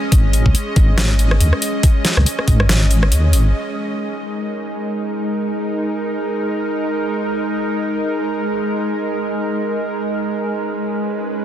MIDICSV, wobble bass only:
0, 0, Header, 1, 2, 480
1, 0, Start_track
1, 0, Key_signature, 5, "minor"
1, 0, Tempo, 500000
1, 10991, End_track
2, 0, Start_track
2, 0, Title_t, "Wobble bass"
2, 0, Program_c, 0, 39
2, 116, Note_on_c, 0, 32, 103
2, 424, Note_off_c, 0, 32, 0
2, 438, Note_on_c, 0, 37, 95
2, 519, Note_off_c, 0, 37, 0
2, 732, Note_on_c, 0, 32, 84
2, 1338, Note_off_c, 0, 32, 0
2, 1348, Note_on_c, 0, 39, 97
2, 1457, Note_off_c, 0, 39, 0
2, 2083, Note_on_c, 0, 37, 92
2, 2164, Note_off_c, 0, 37, 0
2, 2378, Note_on_c, 0, 32, 87
2, 2577, Note_off_c, 0, 32, 0
2, 2583, Note_on_c, 0, 32, 103
2, 2993, Note_on_c, 0, 39, 89
2, 3007, Note_off_c, 0, 32, 0
2, 3197, Note_on_c, 0, 32, 93
2, 3211, Note_off_c, 0, 39, 0
2, 3390, Note_off_c, 0, 32, 0
2, 10991, End_track
0, 0, End_of_file